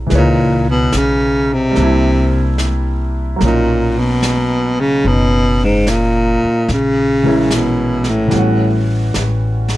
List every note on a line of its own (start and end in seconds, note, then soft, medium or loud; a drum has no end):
0.00 0.14 C#4 soft
0.00 0.15 E4 medium
0.00 0.10 B4 soft
0.07 1.73 E3 soft
0.07 1.75 G#3 soft
0.07 brush sweep soft
0.07 snare soft
0.11 0.90 C#2 medium
0.11 0.66 A#2 medium
0.11 1.76 B4 soft
0.11 1.78 C#5 soft
0.18 1.79 D#4 medium
0.70 0.98 B2 medium
0.92 1.72 B1 medium
0.92 snare soft
0.92 hi-hat pedal soft
0.97 1.55 C#3 medium
1.53 2.60 C3 medium
1.71 3.38 G3 medium
1.71 3.37 A#3 soft
1.76 3.37 C2 medium
1.76 3.41 C4 soft
1.76 brush sweep soft
1.76 snare soft
1.80 3.42 D4 soft
1.80 3.44 E4 medium
2.58 snare soft
2.58 hi-hat pedal soft
3.36 6.67 F#3 soft
3.36 6.68 A#3 soft
3.41 5.01 B1 medium
3.41 4.00 A#2 medium
3.41 5.04 C#4 soft
3.41 brush sweep soft
3.41 snare soft
3.48 5.06 D#4 soft
3.98 4.82 B2 medium
4.22 snare soft
4.22 hi-hat pedal soft
4.80 5.09 C#3 medium
5.04 6.39 F#1 medium
5.04 5.66 B2 medium
5.04 6.69 C#4 soft
5.04 6.70 D#4 soft
5.04 brush sweep soft
5.64 5.90 G#2 medium
5.87 6.70 A#2 medium
5.87 snare soft
5.87 hi-hat pedal soft
6.44 muted upright bass stroke soft
6.68 8.28 A#1 medium
6.68 7.55 C#3 medium
6.68 brush sweep soft
6.68 snare soft
7.23 8.26 E3 soft
7.23 8.32 G#3 soft
7.23 8.33 C#4 soft
7.23 8.33 A#4 soft
7.28 8.34 E4 medium
7.51 8.11 B2 medium
7.51 snare soft
7.51 hi-hat pedal medium
8.04 snare soft
8.10 8.90 A2 medium
8.28 9.77 E3 soft
8.28 9.77 G3 soft
8.28 brush sweep soft
8.28 snare soft
8.33 9.11 A1 medium
8.33 9.77 B3 soft
8.33 9.77 C#4 soft
8.39 9.77 F#4 medium
9.14 9.77 A1 medium
9.14 snare soft
9.14 hi-hat pedal soft
9.68 snare soft